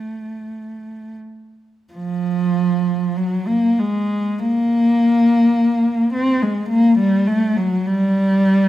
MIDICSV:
0, 0, Header, 1, 2, 480
1, 0, Start_track
1, 0, Tempo, 1583113
1, 589, Tempo, 1234568
1, 590, Time_signature, 4, 2, 24, 8
1, 1549, Tempo, 1158301
1, 3320, End_track
2, 0, Start_track
2, 0, Title_t, "Cello"
2, 0, Program_c, 0, 42
2, 0, Note_on_c, 0, 57, 56
2, 352, Note_off_c, 0, 57, 0
2, 587, Note_on_c, 0, 53, 73
2, 1059, Note_off_c, 0, 53, 0
2, 1065, Note_on_c, 0, 54, 67
2, 1183, Note_on_c, 0, 58, 65
2, 1192, Note_off_c, 0, 54, 0
2, 1308, Note_on_c, 0, 56, 70
2, 1310, Note_off_c, 0, 58, 0
2, 1542, Note_on_c, 0, 58, 76
2, 1545, Note_off_c, 0, 56, 0
2, 2261, Note_off_c, 0, 58, 0
2, 2263, Note_on_c, 0, 60, 69
2, 2380, Note_off_c, 0, 60, 0
2, 2382, Note_on_c, 0, 56, 63
2, 2495, Note_on_c, 0, 58, 80
2, 2503, Note_off_c, 0, 56, 0
2, 2613, Note_on_c, 0, 55, 77
2, 2618, Note_off_c, 0, 58, 0
2, 2735, Note_on_c, 0, 57, 80
2, 2739, Note_off_c, 0, 55, 0
2, 2855, Note_on_c, 0, 54, 72
2, 2863, Note_off_c, 0, 57, 0
2, 2978, Note_on_c, 0, 55, 86
2, 2983, Note_off_c, 0, 54, 0
2, 3320, Note_off_c, 0, 55, 0
2, 3320, End_track
0, 0, End_of_file